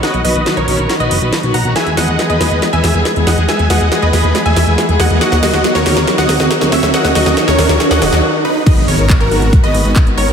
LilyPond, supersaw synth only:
\new Staff \with { instrumentName = "Supersaw synth" } { \time 4/4 \key gis \minor \tempo 4 = 139 <dis'' fis''>8 <b' dis''>8. <ais' cis''>8. r16 <b' dis''>8. r8 <fis'' ais''>8 | <e'' gis''>8 <dis'' fis''>8. <b' dis''>8. r16 <e'' gis''>8. r8 <dis'' fis''>8 | <e'' gis''>8 <dis'' fis''>8. <b' dis''>8. r16 <e'' gis''>8. r8 <dis'' fis''>8 | <dis'' fis''>8 <fis' dis''>8. <ais' cis''>8. r16 <dis'' fis''>8. r8 <cis'' e''>8 |
<dis'' fis''>8 <fis' dis''>8. <ais' cis''>8. r16 <dis'' fis''>8. r8 <dis' b'>8 | <b' dis''>8 <ais' cis''>8. <fis' ais'>8. r16 <b' dis''>8. r8 <ais' cis''>8 | }